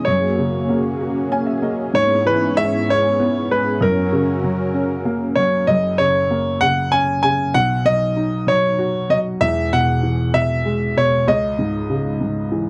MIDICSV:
0, 0, Header, 1, 4, 480
1, 0, Start_track
1, 0, Tempo, 623053
1, 52, Time_signature, 6, 3, 24, 8
1, 9780, End_track
2, 0, Start_track
2, 0, Title_t, "Grand piano"
2, 0, Program_c, 0, 0
2, 37, Note_on_c, 0, 73, 81
2, 975, Note_off_c, 0, 73, 0
2, 1501, Note_on_c, 0, 73, 95
2, 1721, Note_off_c, 0, 73, 0
2, 1745, Note_on_c, 0, 71, 84
2, 1980, Note_on_c, 0, 76, 96
2, 1987, Note_off_c, 0, 71, 0
2, 2225, Note_off_c, 0, 76, 0
2, 2237, Note_on_c, 0, 73, 94
2, 2675, Note_off_c, 0, 73, 0
2, 2707, Note_on_c, 0, 71, 79
2, 2945, Note_on_c, 0, 70, 79
2, 2948, Note_off_c, 0, 71, 0
2, 4109, Note_off_c, 0, 70, 0
2, 4125, Note_on_c, 0, 73, 82
2, 4370, Note_on_c, 0, 75, 85
2, 4378, Note_off_c, 0, 73, 0
2, 4608, Note_on_c, 0, 73, 88
2, 4620, Note_off_c, 0, 75, 0
2, 5061, Note_off_c, 0, 73, 0
2, 5090, Note_on_c, 0, 78, 104
2, 5329, Note_on_c, 0, 80, 97
2, 5340, Note_off_c, 0, 78, 0
2, 5556, Note_off_c, 0, 80, 0
2, 5568, Note_on_c, 0, 80, 99
2, 5794, Note_off_c, 0, 80, 0
2, 5812, Note_on_c, 0, 78, 105
2, 6053, Note_on_c, 0, 75, 108
2, 6060, Note_off_c, 0, 78, 0
2, 6534, Note_on_c, 0, 73, 85
2, 6547, Note_off_c, 0, 75, 0
2, 7012, Note_on_c, 0, 75, 88
2, 7028, Note_off_c, 0, 73, 0
2, 7066, Note_off_c, 0, 75, 0
2, 7248, Note_on_c, 0, 76, 101
2, 7495, Note_on_c, 0, 78, 96
2, 7497, Note_off_c, 0, 76, 0
2, 7966, Note_on_c, 0, 76, 89
2, 7987, Note_off_c, 0, 78, 0
2, 8456, Note_on_c, 0, 73, 87
2, 8462, Note_off_c, 0, 76, 0
2, 8691, Note_on_c, 0, 75, 93
2, 8700, Note_off_c, 0, 73, 0
2, 9780, Note_off_c, 0, 75, 0
2, 9780, End_track
3, 0, Start_track
3, 0, Title_t, "Analog synth pad"
3, 0, Program_c, 1, 89
3, 0, Note_on_c, 1, 61, 72
3, 0, Note_on_c, 1, 68, 66
3, 0, Note_on_c, 1, 73, 78
3, 52, Note_on_c, 1, 58, 76
3, 54, Note_on_c, 1, 66, 69
3, 1467, Note_off_c, 1, 73, 0
3, 1480, Note_off_c, 1, 58, 0
3, 1481, Note_off_c, 1, 66, 0
3, 1494, Note_on_c, 1, 64, 74
3, 1496, Note_on_c, 1, 59, 68
3, 1498, Note_on_c, 1, 44, 79
3, 1499, Note_on_c, 1, 73, 85
3, 2904, Note_off_c, 1, 68, 0
3, 2905, Note_off_c, 1, 61, 0
3, 2921, Note_off_c, 1, 64, 0
3, 2922, Note_off_c, 1, 59, 0
3, 2923, Note_off_c, 1, 44, 0
3, 2923, Note_off_c, 1, 73, 0
3, 2939, Note_on_c, 1, 61, 82
3, 2939, Note_on_c, 1, 66, 73
3, 2941, Note_on_c, 1, 70, 86
3, 4363, Note_off_c, 1, 61, 0
3, 4363, Note_off_c, 1, 66, 0
3, 4364, Note_off_c, 1, 70, 0
3, 9780, End_track
4, 0, Start_track
4, 0, Title_t, "Upright piano"
4, 0, Program_c, 2, 0
4, 0, Control_c, 2, 64, 127
4, 57, Note_on_c, 2, 42, 54
4, 61, Control_c, 2, 64, 0
4, 182, Control_c, 2, 64, 127
4, 293, Note_on_c, 2, 49, 52
4, 536, Note_on_c, 2, 58, 51
4, 779, Note_on_c, 2, 66, 58
4, 1015, Note_on_c, 2, 61, 58
4, 1016, Note_on_c, 2, 80, 73
4, 1127, Note_off_c, 2, 80, 0
4, 1129, Note_on_c, 2, 76, 66
4, 1225, Note_off_c, 2, 49, 0
4, 1238, Note_off_c, 2, 58, 0
4, 1243, Note_off_c, 2, 76, 0
4, 1250, Note_on_c, 2, 58, 56
4, 1252, Note_on_c, 2, 75, 64
4, 1466, Note_off_c, 2, 42, 0
4, 1475, Note_off_c, 2, 66, 0
4, 1477, Note_off_c, 2, 75, 0
4, 1480, Note_off_c, 2, 61, 0
4, 1485, Note_off_c, 2, 58, 0
4, 1492, Note_on_c, 2, 44, 65
4, 1506, Control_c, 2, 64, 0
4, 1638, Control_c, 2, 64, 127
4, 1737, Note_on_c, 2, 52, 59
4, 1978, Note_on_c, 2, 56, 57
4, 2221, Note_on_c, 2, 61, 54
4, 2460, Note_on_c, 2, 59, 60
4, 2668, Note_off_c, 2, 52, 0
4, 2685, Note_off_c, 2, 56, 0
4, 2697, Note_on_c, 2, 56, 56
4, 2903, Note_off_c, 2, 44, 0
4, 2917, Note_off_c, 2, 61, 0
4, 2923, Note_off_c, 2, 59, 0
4, 2929, Note_off_c, 2, 56, 0
4, 2934, Note_on_c, 2, 42, 68
4, 2947, Control_c, 2, 64, 0
4, 3101, Control_c, 2, 64, 127
4, 3178, Note_on_c, 2, 49, 58
4, 3419, Note_on_c, 2, 54, 54
4, 3652, Note_on_c, 2, 61, 59
4, 3892, Note_on_c, 2, 58, 65
4, 4108, Note_off_c, 2, 49, 0
4, 4120, Note_off_c, 2, 54, 0
4, 4132, Note_on_c, 2, 54, 52
4, 4343, Note_off_c, 2, 42, 0
4, 4352, Note_off_c, 2, 61, 0
4, 4359, Note_off_c, 2, 58, 0
4, 4366, Note_off_c, 2, 54, 0
4, 4372, Note_on_c, 2, 30, 57
4, 4374, Note_on_c, 2, 42, 66
4, 4386, Control_c, 2, 64, 0
4, 4544, Control_c, 2, 64, 127
4, 4619, Note_on_c, 2, 49, 51
4, 4858, Note_on_c, 2, 58, 52
4, 5089, Note_off_c, 2, 49, 0
4, 5100, Note_on_c, 2, 49, 54
4, 5337, Note_on_c, 2, 61, 61
4, 5564, Note_off_c, 2, 49, 0
4, 5575, Note_on_c, 2, 49, 59
4, 5782, Note_off_c, 2, 30, 0
4, 5783, Note_off_c, 2, 42, 0
4, 5787, Note_off_c, 2, 58, 0
4, 5801, Note_off_c, 2, 61, 0
4, 5807, Note_off_c, 2, 49, 0
4, 5811, Note_on_c, 2, 35, 58
4, 5813, Note_on_c, 2, 47, 67
4, 5823, Control_c, 2, 64, 0
4, 5947, Control_c, 2, 64, 127
4, 6050, Note_on_c, 2, 54, 57
4, 6290, Note_on_c, 2, 63, 55
4, 6514, Note_off_c, 2, 54, 0
4, 6525, Note_on_c, 2, 54, 52
4, 6768, Note_on_c, 2, 66, 60
4, 6997, Note_off_c, 2, 54, 0
4, 7009, Note_on_c, 2, 54, 53
4, 7220, Note_off_c, 2, 35, 0
4, 7221, Note_off_c, 2, 47, 0
4, 7222, Note_off_c, 2, 63, 0
4, 7235, Note_off_c, 2, 66, 0
4, 7243, Note_off_c, 2, 54, 0
4, 7246, Note_on_c, 2, 40, 63
4, 7247, Note_on_c, 2, 28, 65
4, 7263, Control_c, 2, 64, 0
4, 7412, Control_c, 2, 64, 127
4, 7493, Note_on_c, 2, 47, 60
4, 7728, Note_on_c, 2, 52, 51
4, 7953, Note_off_c, 2, 47, 0
4, 7965, Note_on_c, 2, 47, 54
4, 8207, Note_on_c, 2, 56, 57
4, 8438, Note_off_c, 2, 47, 0
4, 8450, Note_on_c, 2, 47, 56
4, 8656, Note_off_c, 2, 40, 0
4, 8657, Note_off_c, 2, 28, 0
4, 8659, Note_off_c, 2, 52, 0
4, 8674, Note_off_c, 2, 56, 0
4, 8683, Note_off_c, 2, 47, 0
4, 8688, Note_on_c, 2, 37, 64
4, 8701, Control_c, 2, 64, 0
4, 8844, Control_c, 2, 64, 127
4, 8928, Note_on_c, 2, 44, 57
4, 9167, Note_on_c, 2, 49, 53
4, 9395, Note_off_c, 2, 44, 0
4, 9407, Note_on_c, 2, 44, 49
4, 9644, Note_on_c, 2, 52, 58
4, 9780, Note_off_c, 2, 37, 0
4, 9780, Note_off_c, 2, 44, 0
4, 9780, Note_off_c, 2, 49, 0
4, 9780, Note_off_c, 2, 52, 0
4, 9780, End_track
0, 0, End_of_file